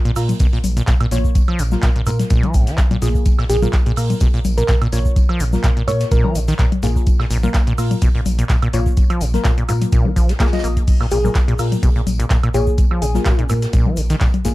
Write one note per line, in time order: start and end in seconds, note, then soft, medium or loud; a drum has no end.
0.05 0.11 A#2 loud
0.05 closed hi-hat soft
0.16 0.33 A#2 medium
0.16 0.31 A#3 medium
0.16 0.31 F4 medium
0.16 0.31 A#4 loud
0.16 open hi-hat loud
0.16 open hi-hat medium
0.16 high woodblock medium
0.16 shaker loud
0.29 closed hi-hat medium
0.29 low conga medium
0.29 shaker medium
0.39 0.47 B2 medium
0.39 kick loud
0.39 closed hi-hat medium
0.39 tambourine medium
0.39 shaker soft
0.53 0.59 A#2 medium
0.53 closed hi-hat soft
0.63 0.81 A#1 medium
0.63 open hi-hat loud
0.63 tambourine medium
0.63 low conga loud
0.63 shaker loud
0.77 0.83 A#2 medium
0.77 closed hi-hat medium
0.77 shaker medium
0.87 0.95 A#2 medium
0.87 kick loud
0.87 snare loud
0.87 clap loud
0.87 closed hi-hat medium
0.87 tambourine loud
0.87 shaker soft
1.00 1.07 A#2 loud
1.00 closed hi-hat soft
1.00 high woodblock medium
1.11 1.28 A#1 medium
1.11 1.19 A#2 medium
1.11 1.26 A#3 medium
1.11 1.26 F4 medium
1.11 1.26 C#5 loud
1.11 open hi-hat loud
1.11 tambourine medium
1.11 shaker loud
1.24 kick medium
1.24 shaker medium
1.35 kick loud
1.35 closed hi-hat medium
1.35 tambourine medium
1.35 shaker soft
1.48 1.61 F3 medium
1.48 high woodblock medium
1.59 1.76 A#1 loud
1.59 1.63 B2 medium
1.59 open hi-hat loud
1.59 tambourine medium
1.59 shaker medium
1.71 1.85 A#3 medium
1.71 1.85 F4 medium
1.71 1.85 A#4 medium
1.71 snare soft
1.71 low conga medium
1.71 shaker medium
1.82 1.90 A#2 medium
1.82 kick loud
1.82 snare loud
1.82 clap loud
1.82 closed hi-hat medium
1.82 tambourine medium
1.82 shaker soft
1.96 2.02 A#2 medium
1.96 closed hi-hat soft
2.06 2.11 G#2 medium
2.06 2.24 A#2 medium
2.06 2.99 A#3 medium
2.06 2.99 F4 medium
2.06 2.99 A#4 medium
2.06 open hi-hat loud
2.06 tambourine medium
2.06 high woodblock medium
2.06 shaker medium
2.19 snare soft
2.19 closed hi-hat medium
2.19 low conga medium
2.19 shaker medium
2.30 2.45 A#2 loud
2.30 kick loud
2.30 closed hi-hat medium
2.30 tambourine medium
2.30 shaker soft
2.43 2.56 F3 medium
2.43 closed hi-hat soft
2.43 low conga loud
2.54 2.71 A#1 loud
2.54 2.69 G#2 medium
2.54 kick medium
2.54 open hi-hat loud
2.54 tambourine medium
2.54 shaker loud
2.67 2.80 F3 medium
2.67 snare soft
2.67 closed hi-hat medium
2.67 shaker medium
2.77 2.82 A#2 medium
2.77 kick loud
2.77 snare loud
2.77 clap loud
2.77 closed hi-hat medium
2.77 tambourine medium
2.77 shaker soft
2.91 2.97 A#2 medium
2.91 closed hi-hat soft
2.91 low conga loud
3.02 3.19 A#1 medium
3.02 3.09 A#2 medium
3.02 3.25 A#3 medium
3.02 3.25 F4 medium
3.02 3.25 G#4 loud
3.02 open hi-hat loud
3.02 tambourine medium
3.02 shaker loud
3.15 kick medium
3.15 closed hi-hat soft
3.15 shaker medium
3.25 kick loud
3.25 closed hi-hat medium
3.25 tambourine medium
3.25 shaker soft
3.38 3.45 A#2 medium
3.38 snare medium
3.38 high woodblock medium
3.49 3.67 A#1 loud
3.49 3.57 A#2 medium
3.49 3.67 G#4 loud
3.49 open hi-hat loud
3.49 tambourine medium
3.49 shaker loud
3.62 3.68 A#2 medium
3.62 3.76 A#3 medium
3.62 3.76 F4 medium
3.62 3.76 A#4 medium
3.62 low conga loud
3.62 shaker medium
3.73 kick loud
3.73 snare loud
3.73 clap loud
3.73 closed hi-hat medium
3.73 tambourine medium
3.73 shaker soft
3.86 3.92 A#2 loud
3.86 closed hi-hat soft
3.96 4.14 A#2 medium
3.96 4.12 A#3 medium
3.96 4.12 F4 medium
3.96 4.12 A#4 loud
3.96 open hi-hat medium
3.96 high woodblock medium
3.96 shaker loud
4.10 closed hi-hat medium
4.10 low conga medium
4.10 shaker soft
4.20 4.28 B2 medium
4.20 kick loud
4.20 closed hi-hat medium
4.20 tambourine loud
4.20 shaker soft
4.34 4.40 A#2 medium
4.34 closed hi-hat soft
4.45 4.62 A#1 medium
4.45 open hi-hat loud
4.45 tambourine medium
4.45 low conga loud
4.45 shaker loud
4.58 4.64 A#2 medium
4.58 4.74 A#4 medium
4.58 closed hi-hat medium
4.58 shaker medium
4.68 4.76 A#2 medium
4.68 kick loud
4.68 snare loud
4.68 clap loud
4.68 closed hi-hat medium
4.68 tambourine medium
4.68 shaker soft
4.82 4.88 A#2 loud
4.82 closed hi-hat soft
4.82 high woodblock medium
4.92 5.09 A#1 medium
4.92 5.00 A#2 medium
4.92 5.07 A#3 medium
4.92 5.07 F4 medium
4.92 5.07 C#5 loud
4.92 open hi-hat loud
4.92 tambourine medium
4.92 shaker loud
5.05 kick medium
5.05 shaker medium
5.16 kick loud
5.16 closed hi-hat medium
5.16 tambourine medium
5.16 shaker soft
5.29 5.42 F3 medium
5.29 high woodblock medium
5.40 5.57 A#1 loud
5.40 5.44 B2 medium
5.40 open hi-hat loud
5.40 tambourine medium
5.40 shaker loud
5.53 5.66 A#3 medium
5.53 5.66 F4 medium
5.53 5.66 A#4 medium
5.53 snare soft
5.53 low conga loud
5.53 shaker medium
5.64 5.71 A#2 medium
5.64 kick loud
5.64 snare loud
5.64 clap loud
5.64 closed hi-hat medium
5.64 tambourine medium
5.64 shaker soft
5.77 5.83 A#2 medium
5.77 closed hi-hat soft
5.87 5.92 G#2 medium
5.87 6.05 A#2 medium
5.87 6.80 A#3 medium
5.87 6.80 F4 medium
5.87 6.80 A#4 medium
5.87 6.05 C#5 loud
5.87 open hi-hat medium
5.87 tambourine medium
5.87 high woodblock medium
5.87 shaker medium
6.00 snare soft
6.00 closed hi-hat medium
6.00 shaker soft
6.11 6.26 A#2 loud
6.11 6.20 A#4 medium
6.11 kick loud
6.11 closed hi-hat medium
6.11 tambourine medium
6.11 shaker soft
6.24 6.37 F3 medium
6.24 6.31 A#4 medium
6.24 low conga loud
6.35 6.52 A#1 medium
6.35 6.40 C#3 loud
6.35 open hi-hat loud
6.35 tambourine medium
6.35 shaker medium
6.48 6.54 D#3 loud
6.48 snare soft
6.48 closed hi-hat medium
6.48 shaker medium
6.59 6.66 A#2 medium
6.59 kick loud
6.59 snare loud
6.59 clap loud
6.59 closed hi-hat medium
6.59 tambourine medium
6.59 shaker soft
6.72 closed hi-hat soft
6.72 low conga loud
6.83 7.00 A#1 loud
6.83 6.87 G#2 medium
6.83 7.06 A#3 medium
6.83 7.06 F4 medium
6.83 7.06 G#4 loud
6.83 open hi-hat medium
6.83 tambourine medium
6.83 shaker medium
6.96 kick medium
6.96 closed hi-hat soft
6.96 shaker soft
7.06 kick loud
7.06 closed hi-hat medium
7.06 tambourine medium
7.06 shaker soft
7.20 7.26 A#2 medium
7.20 snare medium
7.20 high woodblock medium
7.30 7.48 A#1 loud
7.30 7.38 A#2 medium
7.30 open hi-hat loud
7.30 tambourine medium
7.30 shaker medium
7.43 7.49 A#2 medium
7.43 7.57 A#3 medium
7.43 7.57 F4 medium
7.43 7.57 A#4 medium
7.43 low conga loud
7.43 shaker medium
7.54 kick loud
7.54 snare loud
7.54 clap loud
7.54 closed hi-hat medium
7.54 tambourine medium
7.54 shaker soft
7.67 7.73 A#2 loud
7.67 closed hi-hat soft
7.78 7.95 A#2 medium
7.78 7.93 A#3 medium
7.78 7.93 F4 medium
7.78 7.93 A#4 loud
7.78 open hi-hat medium
7.78 high woodblock medium
7.78 shaker loud
7.91 closed hi-hat medium
7.91 low conga medium
7.91 shaker soft
8.02 8.09 B2 medium
8.02 kick loud
8.02 closed hi-hat medium
8.02 tambourine medium
8.02 shaker soft
8.15 8.21 A#2 medium
8.15 closed hi-hat soft
8.26 8.43 A#1 medium
8.26 open hi-hat loud
8.26 tambourine medium
8.26 low conga loud
8.26 shaker medium
8.39 8.45 A#2 medium
8.39 closed hi-hat medium
8.39 shaker soft
8.49 8.57 A#2 medium
8.49 kick loud
8.49 snare loud
8.49 clap loud
8.49 closed hi-hat medium
8.49 tambourine medium
8.49 shaker soft
8.62 8.68 A#2 loud
8.62 closed hi-hat soft
8.62 high woodblock medium
8.73 8.90 A#1 medium
8.73 8.80 A#2 medium
8.73 8.88 A#3 medium
8.73 8.88 F4 medium
8.73 8.88 C#5 loud
8.73 open hi-hat medium
8.73 tambourine medium
8.73 shaker medium
8.86 kick medium
8.86 shaker medium
8.97 kick loud
8.97 closed hi-hat medium
8.97 tambourine medium
8.97 shaker soft
9.10 9.23 F3 medium
9.10 closed hi-hat soft
9.10 high woodblock medium
9.21 9.38 A#1 loud
9.21 9.25 B2 medium
9.21 open hi-hat loud
9.21 tambourine medium
9.21 shaker loud
9.34 9.47 A#3 medium
9.34 9.47 F4 medium
9.34 9.47 A#4 medium
9.34 snare medium
9.34 closed hi-hat soft
9.34 low conga medium
9.34 shaker medium
9.44 9.52 A#2 medium
9.44 kick loud
9.44 snare loud
9.44 clap loud
9.44 closed hi-hat medium
9.44 tambourine loud
9.44 shaker soft
9.58 9.64 A#2 medium
9.58 closed hi-hat soft
9.69 9.73 G#2 medium
9.69 9.86 A#2 medium
9.69 10.38 A#3 medium
9.69 10.38 F4 medium
9.69 10.38 A#4 medium
9.69 open hi-hat medium
9.69 tambourine medium
9.69 high woodblock medium
9.69 shaker loud
9.81 closed hi-hat medium
9.81 closed hi-hat soft
9.81 low conga medium
9.81 shaker medium
9.92 10.07 A#2 loud
9.92 kick loud
9.92 closed hi-hat medium
9.92 tambourine medium
9.92 shaker soft
10.05 10.11 F3 medium
10.05 low conga medium
10.16 10.33 A#1 medium
10.16 10.31 F3 medium
10.16 kick medium
10.16 open hi-hat loud
10.16 tambourine medium
10.16 shaker loud
10.29 10.33 A#3 medium
10.29 snare soft
10.29 closed hi-hat medium
10.29 shaker medium
10.39 10.51 A#3 medium
10.39 10.47 A#3 loud
10.39 10.51 F4 medium
10.39 10.51 G#4 medium
10.39 kick loud
10.39 snare loud
10.39 clap loud
10.39 closed hi-hat medium
10.39 tambourine medium
10.39 shaker soft
10.46 snare medium
10.46 tambourine medium
10.53 10.75 A#3 loud
10.53 10.75 F4 medium
10.53 10.75 D#5 loud
10.53 snare medium
10.53 closed hi-hat soft
10.53 tambourine medium
10.53 low conga medium
10.58 snare loud
10.58 tambourine medium
10.64 10.81 A#1 medium
10.64 10.68 A#3 medium
10.64 open hi-hat medium
10.64 tambourine medium
10.64 shaker medium
10.77 kick medium
10.77 closed hi-hat soft
10.77 shaker medium
10.87 kick loud
10.87 closed hi-hat medium
10.87 crash medium
10.87 tambourine medium
10.87 shaker soft
11.01 11.07 A#2 medium
11.01 snare medium
11.01 high woodblock medium
11.11 11.28 A#1 loud
11.11 11.19 A#2 medium
11.11 11.29 G#4 loud
11.11 open hi-hat loud
11.11 tambourine medium
11.11 shaker medium
11.24 11.30 A#2 medium
11.24 11.38 A#3 medium
11.24 11.38 F4 medium
11.24 11.38 A#4 medium
11.24 low conga medium
11.24 shaker medium
11.35 kick loud
11.35 snare loud
11.35 clap loud
11.35 closed hi-hat medium
11.35 tambourine medium
11.35 shaker soft
11.48 11.54 A#2 loud
11.48 closed hi-hat soft
11.59 11.76 A#2 medium
11.59 11.74 A#3 medium
11.59 11.74 F4 medium
11.59 11.74 A#4 loud
11.59 open hi-hat medium
11.59 open hi-hat loud
11.59 high woodblock medium
11.59 shaker loud
11.72 closed hi-hat medium
11.72 low conga medium
11.72 shaker medium
11.83 11.90 B2 medium
11.83 kick loud
11.83 closed hi-hat medium
11.83 tambourine loud
11.83 shaker soft
11.96 12.02 A#2 medium
11.96 closed hi-hat soft
12.07 12.24 A#1 medium
12.07 open hi-hat loud
12.07 tambourine medium
12.07 low conga loud
12.07 shaker medium
12.19 12.26 A#2 medium
12.19 closed hi-hat medium
12.19 shaker medium
12.30 12.38 A#2 medium
12.30 kick loud
12.30 snare loud
12.30 clap loud
12.30 closed hi-hat medium
12.30 tambourine medium
12.30 shaker soft
12.43 12.49 A#2 loud
12.43 closed hi-hat soft
12.43 high woodblock medium
12.54 12.71 A#1 medium
12.54 12.61 A#2 medium
12.54 12.69 A#3 loud
12.54 12.69 F4 medium
12.54 12.72 G#4 medium
12.54 12.69 C#5 loud
12.54 open hi-hat medium
12.54 tambourine medium
12.54 shaker medium
12.67 kick medium
12.67 shaker medium
12.78 kick loud
12.78 closed hi-hat medium
12.78 tambourine medium
12.78 shaker soft
12.91 13.03 F3 medium
12.91 high woodblock medium
13.02 13.19 A#1 loud
13.02 13.06 B2 medium
13.02 13.39 G#4 loud
13.02 open hi-hat loud
13.02 tambourine medium
13.02 shaker medium
13.14 13.28 A#3 medium
13.14 13.28 F4 medium
13.14 13.28 A#4 medium
13.14 snare soft
13.14 low conga medium
13.14 shaker medium
13.25 13.33 A#2 medium
13.25 kick loud
13.25 snare loud
13.25 clap loud
13.25 closed hi-hat medium
13.25 tambourine loud
13.25 shaker soft
13.39 13.45 A#2 medium
13.39 closed hi-hat soft
13.49 13.54 G#2 medium
13.49 13.67 A#2 medium
13.49 14.42 A#3 medium
13.49 14.42 F4 medium
13.49 14.42 A#4 medium
13.49 open hi-hat loud
13.49 tambourine medium
13.49 high woodblock medium
13.49 shaker loud
13.62 snare soft
13.62 closed hi-hat medium
13.62 shaker medium
13.73 13.88 A#2 loud
13.73 kick loud
13.73 closed hi-hat medium
13.73 tambourine medium
13.73 shaker soft
13.86 13.99 F3 medium
13.86 low conga medium
13.97 14.14 A#1 medium
13.97 14.01 C#3 loud
13.97 open hi-hat loud
13.97 tambourine medium
13.97 shaker loud
14.10 14.16 D#3 loud
14.10 snare soft
14.10 closed hi-hat medium
14.10 shaker medium
14.20 14.28 A#2 medium
14.20 kick loud
14.20 snare loud
14.20 clap loud
14.20 closed hi-hat medium
14.20 tambourine medium
14.20 shaker soft
14.34 closed hi-hat soft
14.34 low conga medium
14.45 14.54 A#1 medium
14.45 14.49 G#2 medium
14.45 14.54 A#3 medium
14.45 14.54 F4 medium
14.45 14.54 G#4 loud
14.45 open hi-hat medium
14.45 tambourine medium
14.45 shaker loud